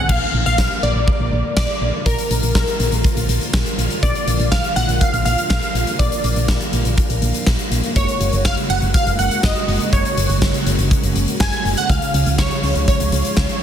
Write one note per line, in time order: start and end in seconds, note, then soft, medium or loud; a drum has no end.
0.09 0.20 A#1 loud
0.09 7.92 D3 medium
0.09 11.86 A#3 medium
0.09 0.45 F5 loud
0.09 kick loud
0.09 crash medium
0.34 0.45 A#1 loud
0.46 0.57 A#1 loud
0.46 0.84 F5 loud
0.58 0.69 A#1 loud
0.58 kick loud
0.58 snare loud
0.83 0.94 A#1 loud
0.83 1.55 D5 loud
0.95 1.06 A#1 loud
1.08 kick loud
1.20 1.31 A#1 medium
1.32 1.43 A#1 loud
1.57 1.68 A#1 loud
1.57 2.07 D5 loud
1.57 kick loud
1.57 snare loud
1.81 1.92 A#1 medium
2.06 2.17 A#1 loud
2.06 2.54 A#4 loud
2.06 kick loud
2.06 closed hi-hat medium
2.18 closed hi-hat medium
2.31 2.41 A#1 loud
2.31 closed hi-hat medium
2.43 2.54 A#1 loud
2.43 closed hi-hat soft
2.55 2.66 A#1 loud
2.55 3.25 A#4 medium
2.55 kick loud
2.55 snare loud
2.67 closed hi-hat medium
2.80 2.91 A#1 loud
2.80 closed hi-hat medium
2.92 3.03 A#1 medium
2.92 closed hi-hat medium
3.04 kick loud
3.04 closed hi-hat medium
3.17 3.27 A#1 medium
3.17 closed hi-hat medium
3.29 3.40 A#1 loud
3.29 closed hi-hat medium
3.41 closed hi-hat medium
3.53 3.65 A#1 loud
3.53 kick loud
3.53 snare loud
3.66 closed hi-hat medium
3.78 3.89 A#1 medium
3.78 closed hi-hat medium
3.90 closed hi-hat medium
4.03 4.14 A#1 loud
4.03 4.48 D5 loud
4.03 kick loud
4.03 closed hi-hat medium
4.15 closed hi-hat medium
4.27 4.38 A#1 loud
4.27 closed hi-hat medium
4.40 4.50 A#1 loud
4.40 closed hi-hat soft
4.52 4.63 A#1 loud
4.52 4.77 F5 loud
4.52 kick loud
4.52 snare loud
4.64 closed hi-hat medium
4.76 4.87 A#1 loud
4.76 5.02 F#5 loud
4.76 closed hi-hat medium
4.89 5.00 A#1 loud
4.89 closed hi-hat medium
5.01 5.24 F5 loud
5.01 kick loud
5.01 closed hi-hat medium
5.13 5.24 A#1 medium
5.13 closed hi-hat medium
5.25 5.36 A#1 loud
5.25 5.48 F5 loud
5.25 closed hi-hat medium
5.38 closed hi-hat medium
5.50 5.61 A#1 loud
5.50 6.01 F5 loud
5.50 kick loud
5.50 snare loud
5.62 closed hi-hat medium
5.75 5.86 A#1 medium
5.75 closed hi-hat medium
5.87 closed hi-hat medium
5.99 6.10 A#1 loud
5.99 6.94 D5 medium
5.99 kick loud
5.99 closed hi-hat medium
6.12 closed hi-hat medium
6.24 6.35 A#1 loud
6.24 closed hi-hat medium
6.36 6.47 A#1 medium
6.36 closed hi-hat soft
6.48 6.59 A#1 loud
6.48 kick loud
6.48 snare loud
6.61 closed hi-hat medium
6.73 6.84 A#1 loud
6.73 closed hi-hat medium
6.85 6.96 A#1 loud
6.85 closed hi-hat medium
6.97 kick loud
6.97 closed hi-hat medium
7.10 7.21 A#1 loud
7.10 closed hi-hat medium
7.22 7.33 A#1 loud
7.22 closed hi-hat medium
7.34 closed hi-hat medium
7.47 7.58 A#1 loud
7.47 kick loud
7.47 snare loud
7.59 closed hi-hat medium
7.71 7.82 A#1 loud
7.71 closed hi-hat medium
7.83 closed hi-hat medium
7.96 8.07 F#1 loud
7.96 13.63 C#3 medium
7.96 11.86 G#3 medium
7.96 11.86 F#4 medium
7.96 8.47 C#5 loud
7.96 kick loud
7.96 closed hi-hat medium
8.08 closed hi-hat medium
8.21 8.31 F#1 loud
8.21 closed hi-hat medium
8.33 8.44 F#1 loud
8.33 closed hi-hat medium
8.45 8.56 F#1 loud
8.45 8.56 F5 loud
8.45 kick loud
8.45 snare loud
8.57 closed hi-hat medium
8.70 8.81 F#1 loud
8.70 8.81 F#5 loud
8.70 open hi-hat medium
8.82 8.93 F#1 loud
8.82 closed hi-hat medium
8.94 9.20 F5 loud
8.94 kick loud
8.94 closed hi-hat medium
9.06 9.17 F#1 medium
9.06 closed hi-hat medium
9.19 9.30 F#1 medium
9.19 9.44 F#5 loud
9.19 closed hi-hat medium
9.31 closed hi-hat medium
9.43 9.55 F#1 loud
9.43 9.94 D#5 loud
9.43 kick loud
9.43 snare loud
9.56 closed hi-hat medium
9.68 9.79 F#1 loud
9.68 open hi-hat medium
9.80 closed hi-hat soft
9.93 10.04 F#1 loud
9.93 10.87 C#5 medium
9.93 kick loud
9.93 closed hi-hat medium
10.05 closed hi-hat medium
10.17 10.28 F#1 loud
10.17 closed hi-hat medium
10.29 10.40 F#1 medium
10.29 closed hi-hat soft
10.42 10.53 F#1 loud
10.42 kick loud
10.42 snare loud
10.54 closed hi-hat medium
10.66 10.77 F#1 loud
10.66 closed hi-hat medium
10.79 10.90 F#1 loud
10.79 closed hi-hat medium
10.91 kick loud
10.91 closed hi-hat medium
11.03 11.14 F#1 loud
11.03 closed hi-hat medium
11.16 11.27 F#1 loud
11.16 closed hi-hat medium
11.28 closed hi-hat medium
11.40 11.51 F#1 loud
11.40 11.78 G#5 loud
11.40 kick loud
11.40 snare loud
11.53 closed hi-hat medium
11.65 11.76 F#1 loud
11.65 open hi-hat medium
11.77 11.90 F#5 loud
11.77 closed hi-hat medium
11.89 12.00 C#2 loud
11.89 13.63 F3 medium
11.89 13.63 G#3 medium
11.89 13.63 F4 medium
11.89 12.40 F5 loud
11.89 kick loud
11.89 closed hi-hat medium
12.02 closed hi-hat medium
12.14 12.25 C#2 loud
12.14 closed hi-hat medium
12.26 12.37 C#2 loud
12.26 closed hi-hat soft
12.38 12.50 C#2 loud
12.38 12.87 C#5 loud
12.38 kick loud
12.38 snare loud
12.51 closed hi-hat medium
12.63 12.74 C#2 loud
12.63 open hi-hat medium
12.75 12.86 C#2 loud
12.75 closed hi-hat medium
12.88 13.63 C#5 loud
12.88 kick loud
12.88 closed hi-hat medium
13.00 13.11 C#2 loud
13.00 closed hi-hat medium
13.12 13.23 C#2 loud
13.12 closed hi-hat medium
13.25 closed hi-hat medium
13.37 13.48 C#2 loud
13.37 kick loud
13.37 snare loud
13.49 closed hi-hat medium